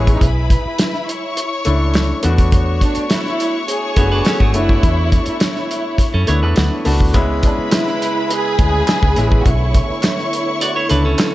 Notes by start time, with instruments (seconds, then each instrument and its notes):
Already playing: fingered electric bass A1, grand piano G#3 B3 C#4 E4, violin section G#4, string section C#5 C#6
0.07 kick, closed hi-hat
0.15 violin section D#4
0.21 fingered electric bass B1, violin section E4, string section B4 B5, kick, closed hi-hat
0.50 kick, closed hi-hat
0.65 violin section E4, muted fingered electric bass stroke
0.79 snare, closed hi-hat
0.94 snare
1.08 string section C#5 C#6, closed hi-hat
1.37 closed hi-hat
1.65 fingered electric bass C#2, grand piano A3 C#4 D4 E4, closed hi-hat
1.94 snare, closed hi-hat
2.23 fingered electric bass E2, grand piano A3 B3 D4 F#4, string section C#5 C#6, closed hi-hat
2.38 kick, closed hi-hat
2.52 kick, closed hi-hat
2.81 violin section D4, kick, closed hi-hat
2.95 muted fingered electric bass stroke, closed hi-hat
3.10 violin section E4, snare, closed hi-hat
3.25 snare
3.40 closed hi-hat
3.68 violin section G#4, closed hi-hat
3.96 fingered electric bass F#1, grand piano A3 B3 D4 F#4, clean electric guitar E4 C#5, kick, closed hi-hat
4.12 clean electric guitar D4 B4
4.25 clean electric guitar C#4 A4, snare, closed hi-hat
4.40 fingered electric bass G#1, clean electric guitar A3 F#4, kick
4.54 fingered electric bass F#1, grand piano A3 B3 D4 E4, violin section E4, closed hi-hat
4.69 kick
4.83 fingered electric bass E2, kick, closed hi-hat
5.12 kick, closed hi-hat
5.26 violin section E4, muted fingered electric bass stroke, closed hi-hat
5.40 snare, closed hi-hat
5.56 snare
5.71 closed hi-hat
5.98 kick, closed hi-hat
6.14 fingered electric bass F#2, clean electric guitar C#4 A4
6.27 fingered electric bass D2, grand piano A3 B3 D4 E4, clean electric guitar E4 C#5, closed hi-hat
6.43 fingered electric bass E2, clean electric guitar D4 B4
6.56 fingered electric bass D2, grand piano F#5, snare, closed hi-hat
6.85 fingered electric bass C#2, grand piano A3 B3 D4 F#4 A5, open hi-hat
7.00 fingered electric bass D2, kick
7.14 fingered electric bass C#2, tonewheel organ C#3 G#3 B3 E4, grand piano G#3 B3 C#4 E4, string section B4 B5, kick, closed hi-hat
7.43 violin section D4, kick, closed hi-hat
7.59 muted fingered electric bass stroke
7.71 violin section E4, snare, clap, closed hi-hat
7.87 snare
8.02 closed hi-hat
8.30 violin section G#4, closed hi-hat
8.59 fingered electric bass D2, grand piano G#3 B3 C#4 E4, kick, closed hi-hat
8.87 snare, clap, closed hi-hat
9.03 fingered electric bass C#2, kick
9.16 fingered electric bass A1, grand piano G#3 B3 C#4 E4, closed hi-hat
9.32 kick
9.41 violin section F#4
9.46 fingered electric bass B1, tonewheel organ D3 A3, violin section E4, string section C#5 C#6, kick, closed hi-hat
9.74 kick, closed hi-hat
9.90 violin section E4, muted fingered electric bass stroke
10.03 snare, clap, closed hi-hat
10.19 snare
10.33 closed hi-hat
10.61 clean electric guitar F#4 D5, closed hi-hat
10.76 clean electric guitar E4 C#5
10.89 fingered electric bass C#2, grand piano D3 A3 C#4 E4, clean electric guitar D4 B4, closed hi-hat
11.05 clean electric guitar C#4 A4
11.18 snare, clap, closed hi-hat